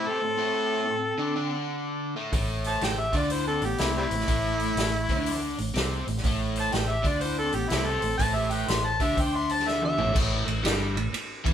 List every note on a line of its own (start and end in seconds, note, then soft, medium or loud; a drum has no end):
0.00 0.20 C3 medium
0.00 0.21 C4 medium
0.08 1.54 C4 medium
0.08 1.49 A4 medium
0.21 0.35 A2 medium
0.37 0.86 A2 medium
0.37 0.86 A3 medium
0.87 1.12 A2 medium
1.18 1.35 D3 medium
1.18 1.35 D4 loud
1.36 2.15 D3 medium
1.36 2.15 D4 medium
2.16 2.31 A2 medium
2.16 2.32 A3 medium
2.33 2.79 A1 medium
2.33 2.81 A2 medium
2.33 2.81 A3 medium
2.33 kick loud
2.33 open hi-hat medium
2.64 2.82 A5 medium
2.64 open hi-hat soft
2.68 2.82 C5 medium
2.81 3.11 A1 medium
2.81 3.07 A2 medium
2.81 2.98 C5 medium
2.81 3.01 G5 medium
2.81 snare loud
2.81 open hi-hat medium
2.98 3.14 G4 medium
2.98 3.15 E5 medium
3.12 3.59 D2 medium
3.12 3.61 D3 medium
3.12 3.62 D4 medium
3.12 3.28 F4 medium
3.12 3.33 D5 medium
3.12 kick medium
3.12 open hi-hat soft
3.30 3.47 E4 medium
3.30 3.47 C5 medium
3.30 open hi-hat medium
3.47 3.65 C4 medium
3.47 3.67 A4 medium
3.62 3.78 A1 medium
3.62 3.76 A2 medium
3.62 3.81 B3 medium
3.62 3.82 G4 medium
3.62 open hi-hat soft
3.78 4.09 C2 medium
3.78 4.11 C3 medium
3.78 3.97 A3 medium
3.78 4.11 C4 medium
3.78 3.96 E4 medium
3.78 snare loud
3.78 open hi-hat medium
3.97 4.04 G3 medium
3.97 5.40 A3 medium
3.97 4.05 C4 medium
3.97 5.39 E4 medium
4.11 4.27 A1 medium
4.11 4.26 A2 medium
4.11 open hi-hat soft
4.20 snare soft
4.28 4.74 A1 medium
4.28 4.77 A2 medium
4.28 4.77 A3 medium
4.28 kick loud
4.28 open hi-hat medium
4.60 open hi-hat medium
4.75 5.06 A1 medium
4.75 5.03 A2 medium
4.75 snare loud
4.75 open hi-hat medium
5.09 5.54 D2 medium
5.09 5.57 D3 medium
5.09 5.58 D4 medium
5.09 kick medium
5.09 open hi-hat soft
5.26 open hi-hat medium
5.58 5.74 A1 medium
5.58 5.72 A2 medium
5.58 open hi-hat soft
5.74 6.04 C2 medium
5.74 6.05 C3 medium
5.74 6.06 C4 medium
5.74 snare loud
5.74 open hi-hat medium
6.07 6.23 A1 medium
6.07 6.21 A2 medium
6.07 open hi-hat soft
6.17 snare soft
6.24 6.69 A1 medium
6.24 6.72 A2 medium
6.24 6.73 A3 loud
6.24 kick loud
6.24 open hi-hat medium
6.56 6.73 C5 medium
6.56 open hi-hat soft
6.60 6.74 A5 medium
6.72 7.02 A1 medium
6.72 6.98 A2 medium
6.72 6.90 C5 medium
6.72 6.91 G5 medium
6.72 snare loud
6.72 open hi-hat medium
6.89 7.07 G4 medium
6.89 7.08 E5 medium
7.04 7.50 D2 medium
7.04 7.52 D3 medium
7.04 7.52 D4 loud
7.04 7.24 F4 medium
7.04 7.24 D5 medium
7.04 kick medium
7.04 open hi-hat soft
7.21 7.39 E4 medium
7.21 7.38 C5 medium
7.21 open hi-hat medium
7.39 7.58 C4 medium
7.39 7.56 A4 medium
7.53 7.69 A1 medium
7.53 7.67 A2 medium
7.53 7.71 G4 medium
7.53 open hi-hat soft
7.58 7.73 B3 medium
7.70 8.00 C2 medium
7.70 8.02 C3 medium
7.70 7.88 A3 medium
7.70 8.02 C4 medium
7.70 7.88 E4 medium
7.70 snare loud
7.70 open hi-hat medium
7.86 8.20 C4 medium
7.86 8.17 A4 medium
8.02 8.18 A1 medium
8.02 8.17 A2 medium
8.02 open hi-hat soft
8.18 8.65 A1 medium
8.18 8.67 A2 medium
8.18 8.68 A3 medium
8.18 8.36 C5 medium
8.18 8.37 A5 loud
8.18 kick medium
8.18 open hi-hat medium
8.36 8.52 G4 medium
8.36 8.52 E5 medium
8.51 8.68 B4 medium
8.51 8.71 G5 medium
8.51 open hi-hat soft
8.68 8.98 A1 medium
8.68 8.94 A2 medium
8.68 8.83 E5 medium
8.68 8.88 C6 medium
8.68 snare loud
8.68 open hi-hat medium
8.83 9.00 C5 medium
8.83 9.04 A5 medium
9.00 9.16 D2 medium
9.00 9.15 D3 medium
9.00 9.17 D4 medium
9.00 9.18 G4 medium
9.00 9.23 E5 medium
9.00 kick medium
9.00 open hi-hat soft
9.17 9.94 D2 medium
9.17 9.97 D3 medium
9.17 9.97 D4 medium
9.17 9.34 C5 medium
9.17 kick medium
9.17 open hi-hat medium
9.21 9.35 G5 medium
9.35 9.51 E5 medium
9.35 9.54 C6 medium
9.49 9.68 C5 medium
9.49 9.70 A5 loud
9.49 open hi-hat soft
9.59 snare soft
9.67 9.83 A4 medium
9.67 9.83 E5 medium
9.67 snare soft
9.82 10.14 G4 medium
9.82 10.15 E5 medium
9.82 high tom medium
9.98 10.14 A1 medium
9.98 10.12 A2 medium
9.98 10.13 A3 medium
9.98 mid tom medium
10.07 floor tom medium
10.13 10.45 A1 medium
10.13 10.44 A2 medium
10.13 10.45 A3 loud
10.13 kick loud
10.13 crash loud
10.46 10.63 A1 medium
10.46 10.60 A2 medium
10.46 ride medium
10.63 10.94 G1 medium
10.63 10.94 G2 medium
10.63 10.95 G3 loud
10.63 snare loud
10.63 ride medium
10.95 11.11 A1 medium
10.95 11.09 A2 medium
10.95 ride medium
11.13 muted fingered electric bass stroke soft
11.13 muted overdriven electric guitar stroke medium
11.13 ride medium
11.44 11.54 E2 medium
11.44 11.54 E3 medium
11.44 11.54 E4 medium
11.44 kick loud
11.44 ride medium